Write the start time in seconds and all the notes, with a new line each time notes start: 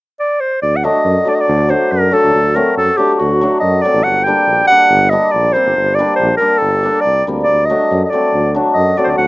0.20 D5
0.41 C5
0.62 D2 D5
0.76 F#5
0.83 F#3 A3 D4 D#5
1.05 F#2
1.25 F#3 A3 D4 D5
1.35 D#5
1.41 D5
1.48 D2
1.69 F#3 A3 D4 C5
1.92 F#2 A#4
2.11 F#3 A3 D4 A4
2.24 D2
2.35 D2
2.54 F#3 A3 C4 A#4
2.77 F#2 A4
2.97 F#3 A3 D4 G4
3.14 F#4 G4
3.21 D2
3.41 F#3 A3 D4
3.60 F#2 D#5
3.81 F#3 A3 C4 D5
3.94 A1
4.04 G1 F#5
4.24 G3 A#3 G5
4.28 D4
4.47 A#1
4.67 G3 A#3 F#5
4.72 D4
4.90 G1
5.10 G3 A#3 D4 D#5
5.31 A#1 D5
5.53 G3 A#3 C4 C5
5.66 G1
5.76 G1
5.95 G3 D5
5.99 A#3 D4
6.16 A#1 C5
6.37 G3 A#4
6.41 A#3 D4
6.58 G1 A4
6.83 G3 A#3 D4
7.01 D5
7.05 C2
7.27 D2 G3 A#3 C4
7.44 D5
7.48 D2
7.65 D#5
7.70 F#3 A3 D4
7.91 F#2
8.05 D#5
8.10 F#3 A3 D5
8.14 C4
8.33 D2
8.54 F#3 A3 D4
8.74 F#2 D#5
8.97 F#3 A3 C4 D5
9.04 D2 C5 D5
9.18 D2 F#5